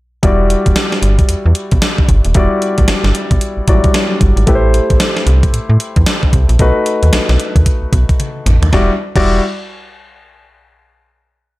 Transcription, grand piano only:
0.23 2.31 G3 medium
0.23 2.31 E4 medium
0.23 2.32 F#4 medium
0.23 2.32 D5 medium
2.35 3.65 G3 medium
2.35 3.65 E4 medium
2.35 3.66 F#4 medium
2.35 3.66 D5 medium
3.68 3.76 F#3 soft
3.68 4.46 E4 medium
3.68 4.48 F#4 medium
3.68 4.48 D5 medium
3.75 4.51 G3 medium
4.46 6.55 A3 medium
4.46 6.56 E4 medium
4.46 6.56 G4 medium
4.46 4.56 B4 medium
4.55 6.60 C5 medium
6.59 8.68 A3 medium
6.59 8.68 D#4 medium
6.59 8.69 F#4 medium
6.59 8.69 B4 medium
8.73 8.90 G3 medium
8.73 8.90 E4 medium
8.73 8.90 F#4 medium
8.73 8.90 D5 medium
9.16 9.40 G3 medium
9.16 9.40 E4 medium
9.16 9.40 F#4 medium
9.16 9.40 D5 medium

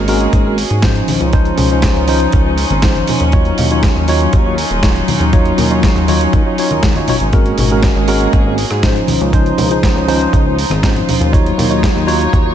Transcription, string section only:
0.00 1.06 A#3 medium
0.00 9.04 C#4 medium
0.00 1.06 F#4 medium
0.00 1.06 G#4 medium
1.08 3.31 D#4 medium
1.08 3.31 F4 medium
3.33 7.30 F#3 medium
3.33 7.30 D#4 medium
3.33 7.29 F4 medium
7.33 9.07 A#3 medium
7.33 9.07 F#4 medium
7.33 9.07 G#4 medium
9.09 11.31 D#4 medium
9.09 12.54 F4 medium
11.34 12.54 F#3 medium
11.34 12.54 D#4 medium
11.34 12.54 C#5 medium

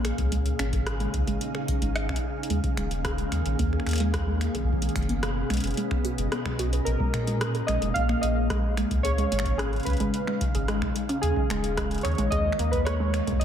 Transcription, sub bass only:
0.00 0.12 A#1 medium
0.18 0.53 C#2 loud
0.59 1.07 G#1 loud
1.14 1.23 C#2 medium
1.27 1.37 G#1 medium
1.82 2.11 G#1 medium
2.09 2.19 B1 medium
2.50 2.60 D#2 loud
2.77 3.26 D#1 loud
3.32 3.42 D#2 medium
3.46 3.55 A#1 medium
3.59 3.79 D#2 medium
3.86 4.48 D#2 medium
4.55 4.89 B1 loud
4.96 5.44 F#1 loud
5.50 5.60 B1 medium
5.64 5.73 F#1 medium
6.18 6.28 F#1 medium
6.46 6.80 B1 medium
6.86 6.96 A#1 loud
7.14 7.62 A#2 loud
7.68 7.78 A#1 medium
7.82 7.92 F1 medium
7.96 8.15 A#1 medium
8.23 8.85 A#1 medium
8.91 9.26 C#2 medium
9.32 9.80 G#1 loud
9.87 9.96 C#2 medium
10.00 10.10 G#1 medium
10.55 10.83 G#1 medium
10.82 10.92 B1 medium
11.23 11.33 D#2 loud
11.50 11.98 D#1 loud
12.05 12.14 D#2 medium
12.18 12.28 A#1 medium
12.32 12.51 D#2 medium
12.59 13.21 D#2 medium
13.27 13.45 B1 loud

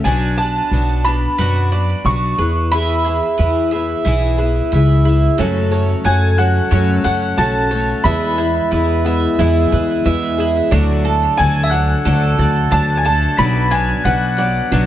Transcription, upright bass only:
0.05 0.59 B1 medium
0.71 1.26 B1 medium
1.39 1.93 F#2 medium
2.05 2.32 B1 medium
2.39 3.20 E2 medium
3.39 3.93 E2 medium
4.06 4.60 B1 medium
4.73 5.26 C#2 medium
5.39 5.93 F#2 loud
6.05 6.59 F#2 medium
6.72 6.99 F#2 loud
7.05 7.32 F#2 medium
7.38 7.92 B1 medium
8.05 8.59 E2 loud
8.72 9.26 E2 loud
9.39 9.66 E2 loud
9.72 9.99 E2 medium
10.06 10.59 E2 medium
10.72 11.26 D2 loud
11.40 11.93 D2 loud
12.05 12.32 D2 loud
12.39 12.65 D2 medium
12.72 13.26 D2 medium
13.38 13.92 B1 loud
14.05 14.59 B1 loud
14.72 14.86 B1 loud

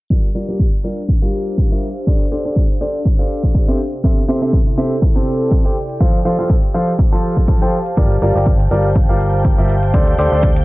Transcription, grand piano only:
0.10 0.27 G3 medium
0.10 0.27 F4 medium
0.10 0.27 G4 medium
0.10 0.27 A#4 medium
0.10 0.27 D5 medium
0.35 0.45 G3 medium
0.35 0.45 F4 medium
0.35 0.45 G4 medium
0.35 0.45 A#4 medium
0.35 0.45 D5 loud
0.48 0.63 G3 medium
0.48 0.63 F4 medium
0.48 0.63 G4 medium
0.48 0.63 A#4 medium
0.48 0.63 D5 medium
0.84 1.01 G3 medium
0.84 1.01 F4 medium
0.84 1.01 G4 medium
0.84 1.01 A#4 medium
0.84 1.01 D5 medium
1.22 1.68 G3 medium
1.22 1.68 F4 medium
1.22 1.68 G4 medium
1.22 1.68 A#4 medium
1.22 1.68 F5 medium
1.71 1.86 G3 medium
1.71 1.86 F4 medium
1.71 1.86 G4 medium
1.71 1.86 A#4 medium
1.71 1.86 E5 medium
2.07 2.24 D4 medium
2.07 2.24 G4 medium
2.07 2.24 A4 medium
2.07 2.24 C5 medium
2.07 2.24 D5 medium
2.32 2.42 D4 medium
2.32 2.42 G4 medium
2.32 2.42 A4 medium
2.32 2.42 C5 medium
2.32 2.42 D5 medium
2.45 2.60 D4 medium
2.45 2.60 G4 medium
2.45 2.60 A4 medium
2.45 2.60 C5 medium
2.45 2.60 D5 medium
2.81 2.98 D4 medium
2.81 2.98 G4 medium
2.81 2.98 A4 medium
2.81 2.98 C5 medium
2.81 2.98 D5 medium
3.19 3.65 D4 medium
3.19 3.65 G4 medium
3.19 3.65 A4 medium
3.19 3.65 C5 medium
3.19 3.65 F5 medium
3.68 3.78 C4 medium
3.68 3.78 G4 medium
3.68 3.78 A4 medium
3.68 3.78 C5 medium
3.68 3.78 E5 medium
4.04 4.20 C4 medium
4.04 4.20 G4 medium
4.04 4.20 A4 medium
4.04 4.21 C5 medium
4.04 4.20 E5 medium
4.28 4.39 C4 medium
4.28 4.39 G4 medium
4.28 4.39 A4 medium
4.28 4.39 C5 medium
4.28 4.39 E5 loud
4.42 4.57 C4 medium
4.42 4.57 G4 medium
4.42 4.57 A4 medium
4.42 4.57 C5 medium
4.42 4.57 E5 medium
4.78 4.94 C4 medium
4.78 4.94 G4 medium
4.78 4.94 A4 medium
4.78 4.94 C5 medium
4.78 4.94 E5 loud
5.16 5.62 C4 medium
5.16 5.62 G4 medium
5.16 5.62 A4 medium
5.16 5.62 C5 medium
5.16 5.62 A5 medium
5.65 5.75 G4 medium
5.65 5.75 A4 medium
5.65 5.75 C5 medium
5.65 5.75 G5 medium
6.00 6.17 F3 medium
6.00 6.17 F4 medium
6.00 6.17 A4 medium
6.00 6.17 C5 medium
6.00 6.17 F5 medium
6.25 6.35 F3 medium
6.25 6.35 F4 medium
6.25 6.35 A4 medium
6.25 6.35 C5 medium
6.25 6.35 F5 loud
6.39 6.54 F3 medium
6.39 6.54 F4 medium
6.39 6.54 A4 medium
6.39 6.54 C5 medium
6.39 6.54 F5 medium
6.74 6.91 F3 medium
6.74 6.91 F4 medium
6.74 6.91 A4 medium
6.74 6.91 C5 medium
6.74 6.91 F5 loud
7.12 7.58 F3 medium
7.12 7.58 F4 medium
7.12 7.58 A4 medium
7.12 7.58 C5 medium
7.12 7.58 A5 medium
7.62 7.77 F3 medium
7.62 7.77 F4 medium
7.62 7.77 A4 medium
7.62 7.77 C5 medium
7.62 7.77 G5 medium
7.97 8.14 G3 medium
7.97 8.14 F4 medium
7.97 8.14 G4 medium
7.97 8.14 A#4 medium
7.97 8.14 D5 medium
8.22 8.32 G3 medium
8.22 8.32 F4 medium
8.22 8.32 G4 medium
8.22 8.32 A#4 medium
8.22 8.32 D5 medium
8.35 8.50 G3 medium
8.35 8.50 F4 medium
8.35 8.50 G4 medium
8.35 8.50 A#4 medium
8.35 8.50 D5 medium
8.71 8.88 G3 medium
8.71 8.88 F4 medium
8.71 8.88 G4 medium
8.71 8.88 A#4 medium
8.71 8.88 D5 medium
9.09 9.55 G3 medium
9.09 9.55 F4 medium
9.09 9.55 G4 medium
9.09 9.55 A#4 medium
9.09 9.55 F5 medium
9.58 9.73 G3 medium
9.58 9.73 F4 medium
9.58 9.73 G4 medium
9.58 9.73 A#4 medium
9.58 9.73 E5 medium
9.94 10.11 D4 medium
9.94 10.11 G4 medium
9.94 10.11 A4 medium
9.94 10.11 C5 medium
9.94 10.11 D5 medium
10.19 10.29 D4 medium
10.19 10.29 G4 medium
10.19 10.29 A4 medium
10.19 10.29 C5 medium
10.19 10.29 D5 loud
10.32 10.47 D4 medium
10.32 10.47 G4 medium
10.32 10.47 A4 medium
10.32 10.47 C5 medium
10.32 10.47 D5 medium

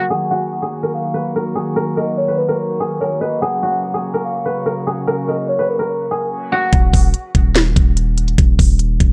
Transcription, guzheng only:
0.00 0.30 F#4 medium
0.00 0.83 A#4 medium
0.10 0.62 G#4 loud
0.31 2.74 F#4 medium
0.62 1.55 G#4 medium
0.83 1.20 A#4 medium
1.14 1.42 B4 medium
1.36 1.76 A#4 medium
1.55 2.80 G#4 medium
1.76 1.96 A#4 medium
1.97 2.34 A#4 medium
2.28 2.54 B4 medium
2.48 3.01 A#4 medium
2.80 3.42 G#4 medium
3.01 3.27 A#4 medium
3.21 4.20 B4 medium
3.42 3.94 G#4 medium
3.63 6.06 F#4 medium
3.94 4.86 G#4 medium
4.14 4.51 A#4 medium
4.45 4.72 B4 medium
4.66 5.07 A#4 medium
4.87 6.11 G#4 medium
5.07 5.28 A#4 loud
5.28 5.65 A#4 medium
5.59 5.85 B4 medium
5.79 7.91 A#4 medium
6.11 8.38 G#4 medium
6.52 8.96 F#4 medium

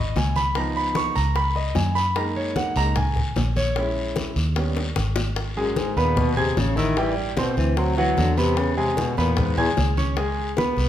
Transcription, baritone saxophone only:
5.57 5.79 F#2 medium
5.77 5.99 G#2 medium
5.97 6.19 A#2 medium
6.17 6.36 B2 medium
6.37 6.59 C3 medium
6.57 6.78 C#3 medium
6.77 6.99 D#3 loud
6.98 7.17 E3 medium
7.18 7.34 G2 soft
7.38 7.57 B2 medium
7.58 7.79 E3 medium
7.78 7.97 F#3 loud
7.97 8.20 E3 medium
8.18 8.39 D3 medium
8.38 8.59 C3 medium
8.58 8.77 C#3 loud
8.77 8.99 C3 medium
8.98 9.17 B2 medium
9.18 9.40 A#2 medium
9.39 9.57 G#2 medium
9.58 9.70 E2 medium

